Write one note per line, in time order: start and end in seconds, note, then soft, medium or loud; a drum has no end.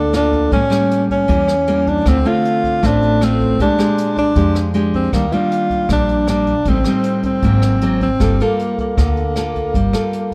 0.00 0.47 D2 medium
0.00 0.50 D3 soft
0.00 0.10 A#3 medium
0.00 0.14 D4 medium
0.00 0.10 F4 soft
0.00 0.11 A4 medium
0.13 0.50 A#3 medium
0.13 0.50 D4 medium
0.13 0.50 F4 medium
0.13 0.50 A4 medium
0.13 cross-stick medium
0.13 closed hi-hat soft
0.32 kick soft
0.32 closed hi-hat soft
0.52 1.26 A2 medium
0.52 0.69 A2 medium
0.52 0.63 G3 soft
0.52 0.63 A#3 soft
0.52 1.06 C#4 medium
0.52 0.63 C#4 soft
0.52 kick soft
0.52 closed hi-hat soft
0.70 1.25 G3 soft
0.70 1.25 A#3 medium
0.70 1.25 C#4 medium
0.70 cross-stick medium
0.70 closed hi-hat soft
0.91 closed hi-hat soft
1.10 1.89 C#4 medium
1.10 kick soft
1.10 closed hi-hat soft
1.28 2.01 E2 medium
1.28 2.03 E3 soft
1.28 1.53 G3 medium
1.28 1.53 A#3 soft
1.28 1.53 C#4 medium
1.28 kick medium
1.28 closed hi-hat soft
1.48 cross-stick soft
1.48 closed hi-hat soft
1.67 2.04 G3 soft
1.67 2.04 A#3 medium
1.67 2.04 C#4 medium
1.67 closed hi-hat soft
1.87 2.10 D4 medium
1.87 kick soft
1.87 closed hi-hat soft
2.06 2.23 D2 medium
2.06 2.81 D3 soft
2.06 2.17 A3 soft
2.06 2.17 C4 soft
2.06 2.29 C4 medium
2.06 2.17 F4 medium
2.06 kick medium
2.06 cross-stick medium
2.06 closed hi-hat soft
2.25 2.79 A3 medium
2.25 2.80 C4 medium
2.25 2.80 F4 medium
2.25 2.88 F4 medium
2.25 closed hi-hat soft
2.45 closed hi-hat soft
2.64 kick soft
2.64 closed hi-hat soft
2.83 3.55 A1 medium
2.83 3.57 A2 medium
2.83 3.18 A3 medium
2.83 3.18 C4 medium
2.83 3.25 D4 medium
2.83 3.18 F4 medium
2.83 kick medium
2.83 cross-stick medium
2.83 closed hi-hat soft
3.02 closed hi-hat soft
3.21 3.58 A3 medium
3.21 3.58 C4 soft
3.21 3.60 C4 medium
3.21 3.58 F4 medium
3.21 cross-stick soft
3.21 closed hi-hat soft
3.40 kick soft
3.40 closed hi-hat soft
3.59 3.77 A#1 medium
3.59 4.34 A#2 soft
3.59 3.76 G#3 soft
3.59 3.76 D4 soft
3.59 4.14 D4 medium
3.59 3.76 G4 medium
3.59 kick medium
3.59 closed hi-hat soft
3.78 4.33 G#3 soft
3.78 4.33 D4 medium
3.78 4.33 G4 medium
3.78 cross-stick medium
3.78 closed hi-hat soft
3.98 closed hi-hat soft
4.17 4.64 D4 medium
4.17 kick soft
4.17 closed hi-hat soft
4.35 5.09 F2 medium
4.35 5.11 F3 medium
4.35 4.71 G#3 soft
4.35 4.71 D4 medium
4.35 4.71 G4 soft
4.35 kick medium
4.35 closed hi-hat soft
4.55 cross-stick soft
4.55 closed hi-hat soft
4.74 5.11 G#3 medium
4.74 5.11 D4 medium
4.74 5.12 G4 medium
4.74 closed hi-hat soft
4.93 5.15 C4 medium
4.93 kick soft
4.93 closed hi-hat soft
5.13 5.31 D#2 medium
5.13 5.88 D#3 soft
5.13 5.24 G3 soft
5.13 5.24 A#3 soft
5.13 5.35 A#3 medium
5.13 5.25 D4 medium
5.13 kick medium
5.13 cross-stick medium
5.13 closed hi-hat soft
5.32 5.87 G3 medium
5.32 5.87 A#3 medium
5.32 5.87 D4 medium
5.32 5.90 F4 medium
5.32 closed hi-hat soft
5.51 closed hi-hat soft
5.70 kick soft
5.70 closed hi-hat soft
5.89 6.62 A#1 medium
5.89 6.65 A#2 soft
5.89 6.25 G3 soft
5.89 6.25 A#3 soft
5.89 6.25 D4 medium
5.89 6.27 D4 medium
5.89 kick medium
5.89 cross-stick medium
5.89 closed hi-hat soft
6.09 closed hi-hat soft
6.27 6.54 G3 medium
6.27 6.54 A#3 soft
6.27 6.70 D4 medium
6.27 6.55 D4 medium
6.27 cross-stick medium
6.27 closed hi-hat soft
6.46 kick soft
6.46 closed hi-hat soft
6.65 6.84 A1 medium
6.65 7.42 A2 soft
6.65 6.78 G3 soft
6.65 6.78 C4 soft
6.65 7.25 C4 medium
6.65 6.78 D#4 medium
6.65 kick medium
6.65 closed hi-hat soft
6.84 7.41 G3 medium
6.84 7.41 C4 medium
6.84 7.41 D#4 medium
6.84 cross-stick medium
6.84 closed hi-hat soft
7.03 closed hi-hat soft
7.23 7.98 C4 medium
7.23 kick soft
7.23 closed hi-hat soft
7.42 8.16 G#1 medium
7.42 8.18 G#2 soft
7.42 7.79 F#3 medium
7.42 7.79 A#3 medium
7.42 7.79 C4 soft
7.42 kick medium
7.42 closed hi-hat soft
7.62 cross-stick soft
7.62 closed hi-hat soft
7.81 8.08 F#3 medium
7.81 8.08 A#3 medium
7.81 8.08 C4 medium
7.81 closed hi-hat soft
8.01 8.44 C4 medium
8.01 kick soft
8.01 closed hi-hat soft
8.20 8.38 G1 medium
8.20 8.95 G3 soft
8.20 8.36 A#3 medium
8.20 8.36 F4 soft
8.20 8.36 A4 medium
8.20 kick medium
8.20 cross-stick medium
8.20 closed hi-hat soft
8.40 8.95 A#3 medium
8.40 8.79 A#3 medium
8.40 8.95 F4 medium
8.40 8.95 A4 medium
8.40 closed hi-hat soft
8.59 closed hi-hat soft
8.78 10.34 A#3 medium
8.78 kick soft
8.78 closed hi-hat soft
8.97 9.70 D2 medium
8.97 9.72 D3 soft
8.97 9.22 A#3 soft
8.97 9.22 F4 soft
8.97 9.23 A4 medium
8.97 kick medium
8.97 cross-stick medium
8.97 closed hi-hat soft
9.17 closed hi-hat soft
9.36 9.74 A#3 medium
9.36 9.74 F4 medium
9.36 9.74 A4 medium
9.36 cross-stick soft
9.36 closed hi-hat soft
9.55 kick soft
9.55 closed hi-hat soft
9.74 9.92 G1 medium
9.74 10.34 G3 soft
9.74 kick soft
9.74 closed hi-hat soft
9.93 10.34 A#3 medium
9.93 10.34 F4 soft
9.93 10.34 A4 medium
9.93 cross-stick medium
9.93 closed hi-hat soft
10.13 closed hi-hat soft